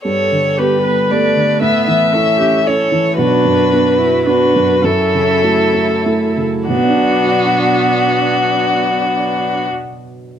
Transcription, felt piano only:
\new Staff \with { instrumentName = "Felt piano" } { \time 3/4 \key b \minor \tempo 4 = 102 g,8 d8 <b g' a'>8 b8 <b g' a'>8 d8 | a,8 e8 <cis' e' a'>8 cis'8 <cis' e' a'>8 e8 | b,,8 fis,8 <b d' fis'>8 b8 <b d' fis'>8 fis,8 | fis,8 cis8 <a e' fis'>8 a8 <a e' fis'>8 cis8 |
<b,, b, b d' fis' d''>2.~ | <b,, b, b d' fis' d''>2. | }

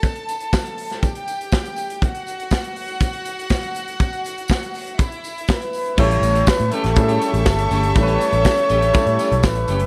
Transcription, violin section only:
\new Staff \with { instrumentName = "Violin section" } { \time 4/4 \key a \mixolydian \tempo 4 = 121 <a' a''>2 <g' g''>2 | <fis' fis''>1~ | <fis' fis''>2 <e' e''>2 | r2 <cis' a' e''>2~ |
<cis' a' e''>1 | }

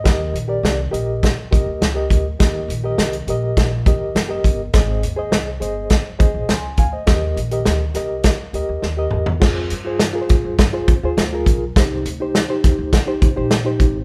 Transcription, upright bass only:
\new Staff \with { instrumentName = "Upright bass" } { \clef bass \time 4/4 \key ees \major \tempo 4 = 103 ees,8 bes,,8 c,8 bes,,8. r16 c,16 d,16 des,8 d,8 | ees,8 bes,,8 c,8 bes,,8 bes,,8 ees8 ges,,8 g,,8 | aes,,8 ees,8 c,8 g,,8. r16 aes,,16 bes,,16 des,8 d,8 | ees,8 bes,,8 d,8 c,8. r16 d,16 ees,16 ees,8 fes,8 |
f,8 g,8. r16 aes,16 g,8 r16 f,16 ees,16 d,8 ces,8 | c,8 d,8. r16 ees,16 d,8 r16 c,16 bes,,8. aes,,8 | }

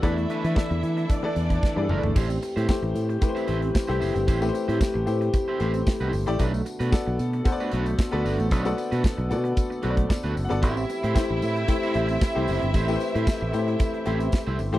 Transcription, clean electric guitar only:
\new Staff \with { instrumentName = "Clean electric guitar" } { \time 4/4 \key a \dorian \tempo 4 = 113 <a d' e' b'>8 <a d' e' b'>16 <a d' e' b'>16 r2 r8 <a d' e' b'>8 | <c' e' g' c''>8 r16 <c' e' g' c''>16 r4 r16 <c' e' g' c''>16 <c' e' g' c''>8 r16 <c' e' g' c''>16 <c' e' g' c''>8 | <c' e' g' c''>8 r16 <c' e' g' c''>16 r4 r16 <c' e' g' c''>16 <c' e' g' c''>8 r16 <c' e' g' c''>8 r16 | <a d' fis' b'>8 r16 <a d' fis' b'>16 r4 r16 <a d' fis' b'>16 <a d' fis' b'>8 r16 <a d' fis' b'>16 <a d' fis' b'>8 |
<a d' fis' b'>8 r16 <a d' fis' b'>16 r4. <a d' fis' b'>8 r16 <a d' fis' b'>8 r16 | <c' e' g' c''>8 r16 <c' e' g' c''>16 r4 r16 <c' e' g' c''>16 <c' e' g' c''>8 r16 <c' e' g' c''>16 <c' e' g' c''>8 | <c' e' g' c''>8 r16 <c' e' g' c''>16 r4. <c' e' g' c''>8 r16 <c' e' g' c''>8 r16 | }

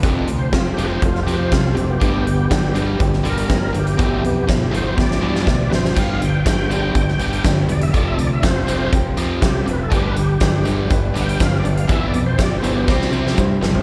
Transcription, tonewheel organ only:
<<
  \new Staff \with { instrumentName = "Tonewheel organ" } { \time 4/4 \key g \mixolydian \tempo 4 = 121 \tuplet 3/2 { r4 c''8 f'8 g'8 <b' c''>8 f'8 g'8 <b' c''>8 f'8 g'8 g'8~ } | g'4.~ g'16 r8. <a' bes'>4 g'8 | g'8 g'8 r8 c''8 d''4. <b' c''>8 | f''8 g''8 <fis'' g''>2 r8 d''16 e''16 |
d''16 e''16 d''16 e''16 c''4 r4 <fis' g'>8 b'16 a'16 | g'16 b'16 g'4 r8 \tuplet 3/2 { r4 <fis'' g''>8 f''8 d''8 f''8 } | \tuplet 3/2 { e''8 d''8 c''8 d''8 c''8 g'8~ } g'16 r4. r16 | }
  \new Staff \with { instrumentName = "Tonewheel organ" } { \time 4/4 \key g \mixolydian r2. \tuplet 3/2 { r4 b8~ } | b4. r2 r8 | r8 b8 r2. | r1 |
r1 | r1 | r4 \tuplet 3/2 { r4 b8 } r2 | }
>>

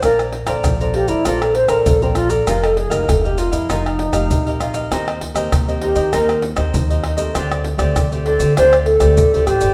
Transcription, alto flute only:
\new Staff \with { instrumentName = "Alto flute" } { \time 4/4 \key bes \major \tempo 4 = 98 bes'8 r4 g'16 e'16 f'16 a'16 c''16 bes'16 a'16 c'16 f'16 a'16 | bes'16 a'16 aes'16 bes'16 a'16 g'16 f'16 e'16 ees'2 | r4. g'8 bes'8 r4. | r4. a'8 c''8 a'4 g'8 | }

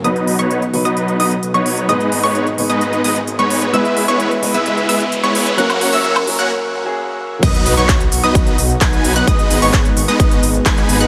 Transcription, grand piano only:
\new Staff \with { instrumentName = "Grand piano" } { \time 4/4 \key b \major \tempo 4 = 130 <b, fis b dis' b'>4. <b, fis b dis' b'>2~ <b, fis b dis' b'>8 | <gis, gis b dis' b'>4. <gis, gis b dis' b'>2~ <gis, gis b dis' b'>8 | <gis b e' b'>4. <gis b e' b'>2~ <gis b e' b'>8 | <fis ais cis' ais'>4. <fis ais cis' ais'>4~ <fis ais cis' ais'>16 <fis ais cis' gis'>4~ <fis ais cis' gis'>16 |
r1 | r1 | }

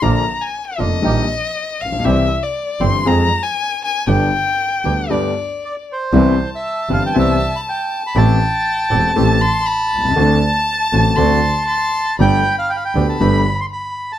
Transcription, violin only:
\new Staff \with { instrumentName = "Violin" } { \time 4/4 \key g \phrygian \tempo 4 = 118 bes''8. aes''8. ees''2 f''8 | e''8. d''8. c'''8 bes''8. aes''8. aes''8 | g''2 d''4. r8 | \key c \major a''1 |
g''2 a''8 c'''8 b''4 | a''2 c'''4 c'''4 | b''4 b''2~ b''8 r8 | }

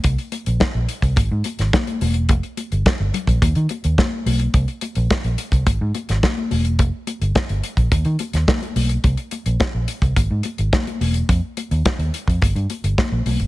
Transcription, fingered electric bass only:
\new Staff \with { instrumentName = "Fingered electric bass" } { \clef bass \time 4/4 \key bes \mixolydian \tempo 4 = 107 c,16 r8 bes,,16 r16 bes,,16 r16 c,16 gis,,16 gis,16 r16 gis,,16 r8 e,,8 | f,,16 r8 g,,16 r16 g,,16 r16 bes,,16 dis,16 dis16 r16 dis,16 r8 b,,8 | c,16 r8 bes,,16 r16 bes,,16 r16 c,16 gis,,16 gis,16 r16 gis,,16 r8 e,,8 | f,,16 r8 g,,16 r16 g,,16 r16 bes,,16 dis,16 dis16 r16 dis,16 r8 b,,8 |
c,16 r8 bes,,16 r16 bes,,16 r16 c,16 gis,,16 gis,16 r16 gis,,16 r8 e,,8 | f,16 r8 ees,16 r16 ees,16 r16 f,16 g,,16 g,16 r16 g,,16 r16 bes,,16 b,,16 g,,16 | }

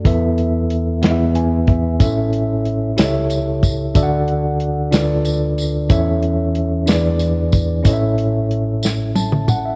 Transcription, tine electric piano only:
\new Staff \with { instrumentName = "Tine electric piano" } { \time 6/8 \key a \major \tempo 4. = 62 << { r2 gis''8 e''8 | r2. | r2. | r2. |
r2 a''8 fis''16 e''16 | } \\ { <e, e b e' a' b' e''>4. <e, e b e' gis' b' dis'' e''>4. | <a,, a, cis' e' a' cis'' e''>4. <cis, cis e' g' a' cis'' dis'' e''>4. | <d, d d' fis' a' d'' e'' fis''>4. <d, d d' f' a' b' d''>4. | <e, e cis' e' a' cis'' e''>4. <e, e d' e' gis' b' d''>4. |
<a,, a, cis' e' a' cis'' dis'' e''>2. | } >> }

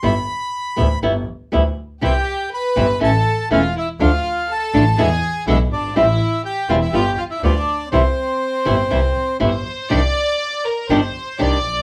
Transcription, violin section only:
\new Staff \with { instrumentName = "Violin section" } { \time 4/4 \key c \major \tempo 4 = 121 r1 | g'4 b'4 a'4 f'8 e'8 | f'4 a'4 gis'4 e'8 d'8 | e'4 g'8 f'16 e'16 g'8 f'16 e'16 d'4 |
c'2. c''4 | \key c \minor d''4. bes'8 c''4 d''4 | }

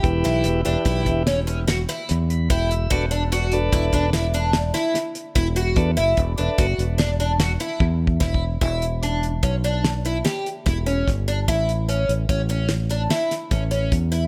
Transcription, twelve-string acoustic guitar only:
\new Staff \with { instrumentName = "Twelve-string acoustic guitar" } { \time 7/4 \key e \dorian \tempo 4 = 147 r8 e'4 d'8 e'4 cis'8 cis'8 fis'8 e'4 r8 e'4 | fis'8 d'8 fis'4 e'8 d'8 e'8 d'4 e'4 r8 e'8 fis'8~ | fis'8 e'4 d'8 fis'4 d'8 d'8 fis'8 e'4 r8 e'4 | e'4 d'4 cis'8 d'4 e'8 g'4 e'8 cis'4 d'8 |
e'4 cis'4 cis'8 cis'4 d'8 e'4 cis'8 cis'4 e'8 | }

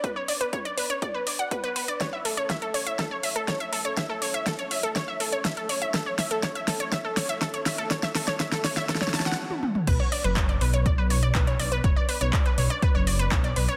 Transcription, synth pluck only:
\new Staff \with { instrumentName = "Synth pluck" } { \time 4/4 \key b \minor \tempo 4 = 122 b'16 cis''16 d''16 b'16 cis''16 d''16 b'16 cis''16 d''16 b'16 d''16 fis''16 b'16 b'16 b'16 d''16 | cis''16 e''16 a'16 cis''16 e''16 a'16 cis''16 e''16 a'16 cis''16 e''16 a'16 cis''16 e''16 a'16 cis''16 | e''16 a'16 cis''16 e''16 a'16 cis''16 e''16 a'16 cis''16 e''16 a'16 cis''16 e''16 a'16 cis''16 e''16 | a'16 cis''16 e''16 a'16 cis''16 e''16 a'16 cis''16 e''16 a'16 cis''16 e''16 a'16 cis''16 e''16 a'16 |
cis''16 e''16 a'16 cis''16 e''16 a'16 cis''16 e''16 a'16 cis''16 a''16 fis''16 r4 | b'16 cis''16 d''16 b'16 cis''16 d''16 b'16 cis''16 d''16 b'16 cis''16 d''16 b'16 cis''16 d''16 b'16 | cis''16 d''16 b'16 cis''16 d''16 b'16 cis''16 d''16 b'16 cis''16 d''16 b'16 cis''16 d''16 b'16 cis''16 | }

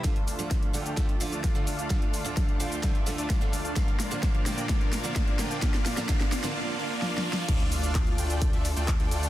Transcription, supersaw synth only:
\new Staff \with { instrumentName = "Supersaw synth" } { \time 4/4 \key d \minor \tempo 4 = 129 <a d' f' d'' f''>4. <a d' f' d'' g''>8. <a d' f' d'' e''>16 r16 <a d' f' d'' a''>16 r4 | <a d' f' d'' f''>4. <a d' f' d'' g''>8. <a d' f' d'' e''>16 r16 <a d' f' d'' a''>16 <a d' f' d'' f''>4 | <bes d'>4. <bes d' f' d'' g''>8 r4. <bes d' f' d'' g''>8 | <bes d' f' d'' f''>4 <bes d' f' d'' f''>4 <bes d' f' d'' f''>8 <bes d' f' d'' f''>8 <bes d' f' d'' f''>8 <bes d' f' d'' f''>8 |
r4. <a d' f' d'' g''>8. <a d' f' d'' e''>16 r16 <a d' f' d'' g''>16 r16 <a d' f' d'' g''>16 <a d' f' d'' g''>8 | }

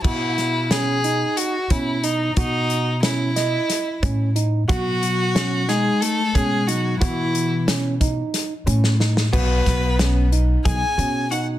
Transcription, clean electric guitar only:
\new Staff \with { instrumentName = "Clean electric guitar" } { \clef bass \time 7/8 \key b \mixolydian \tempo 4 = 90 r2. r8 | r2. r8 | fis4. gis8 a8 gis8 fis8 | e4 r2 r8 |
b4. r8 gis'4 fis'8 | }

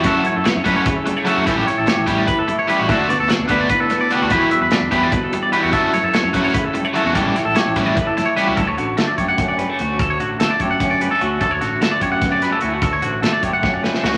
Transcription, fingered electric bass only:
\new Staff \with { instrumentName = "Fingered electric bass" } { \clef bass \time 7/8 \key a \mixolydian \tempo 4 = 148 fis,8 r16 fis,16 r16 fis,16 fis,8 r4 r16 fis,16 | a,,8 r16 a,,16 r16 a,,16 a,,8 r4 r16 a,,16 | d,8 r16 d,16 r16 d,16 d,8 r4 r16 d,16 | e,8 r16 e,16 r16 e,16 e,8 r4 r16 e,16 |
fis,8 r16 fis,16 r16 fis,16 fis,8 r4 r16 e,16 | a,,8 r16 a,,16 r16 a,,16 a,,8 r4 r16 cis,16 | d,8 a,,8 d16 r16 fis,4. d,8 | d,8 a,,8 d16 r16 fis,4. d,8 |
d,8 a,,8 d16 r16 fis,4. d,8 | d,8 a,,8 d16 r16 fis,4. cis,8 | }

